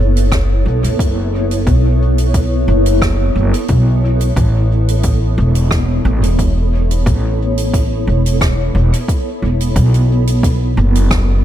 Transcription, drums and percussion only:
0.17 closed hi-hat
0.32 kick, cross-stick, closed hi-hat
0.84 closed hi-hat
0.99 kick, closed hi-hat
1.51 closed hi-hat
1.67 kick, closed hi-hat
2.18 closed hi-hat
2.34 kick, closed hi-hat
2.86 closed hi-hat
3.02 kick, cross-stick, closed hi-hat
3.54 closed hi-hat
3.68 kick, closed hi-hat
4.21 closed hi-hat
4.36 kick, closed hi-hat
4.88 closed hi-hat
5.03 kick, closed hi-hat
5.55 closed hi-hat
5.71 kick, cross-stick, closed hi-hat
6.23 closed hi-hat
6.39 kick, closed hi-hat
6.91 closed hi-hat
7.06 kick, closed hi-hat
7.58 closed hi-hat
7.74 kick, closed hi-hat
8.26 closed hi-hat
8.41 kick, cross-stick, closed hi-hat
8.93 closed hi-hat
9.08 kick, closed hi-hat
9.60 closed hi-hat
9.76 kick, closed hi-hat
9.94 closed hi-hat
10.27 closed hi-hat
10.43 kick, closed hi-hat
10.95 closed hi-hat
11.11 kick, cross-stick, closed hi-hat

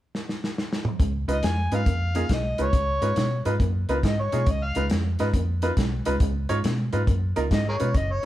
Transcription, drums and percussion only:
0.15 snare
0.29 snare
0.44 snare
0.58 snare
0.73 snare
0.85 mid tom
1.00 kick, closed hi-hat
1.29 closed hi-hat
1.43 snare, closed hi-hat
1.72 closed hi-hat
1.86 kick, closed hi-hat
2.15 closed hi-hat
2.29 kick, snare, closed hi-hat
2.58 closed hi-hat
2.73 kick, closed hi-hat
3.02 closed hi-hat
3.16 snare, closed hi-hat
3.45 closed hi-hat
3.60 kick, closed hi-hat
3.89 closed hi-hat
4.03 kick, snare, closed hi-hat
4.32 closed hi-hat
4.46 kick, closed hi-hat
4.75 closed hi-hat
4.90 snare, closed hi-hat
5.19 snare, closed hi-hat
5.34 kick, closed hi-hat
5.62 closed hi-hat
5.77 kick, snare, closed hi-hat
6.05 closed hi-hat
6.20 kick, closed hi-hat
6.49 closed hi-hat
6.64 snare, closed hi-hat
6.93 closed hi-hat
7.07 kick, closed hi-hat
7.36 closed hi-hat
7.51 kick, snare, closed hi-hat
7.80 closed hi-hat
7.94 kick, closed hi-hat

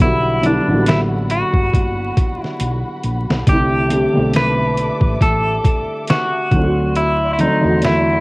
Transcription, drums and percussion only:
0.00 closed hi-hat
0.43 closed hi-hat
0.86 snare, closed hi-hat
1.30 closed hi-hat
1.53 kick
1.73 kick, closed hi-hat
2.17 kick, closed hi-hat
2.44 snare
2.60 closed hi-hat
3.04 closed hi-hat
3.30 snare
3.47 kick, closed hi-hat
3.90 closed hi-hat
4.34 snare, closed hi-hat
4.78 closed hi-hat
5.01 kick
5.21 kick, closed hi-hat
5.65 kick, closed hi-hat
6.07 snare, closed hi-hat
6.51 kick, closed hi-hat
6.95 closed hi-hat
7.39 closed hi-hat
7.82 snare, closed hi-hat

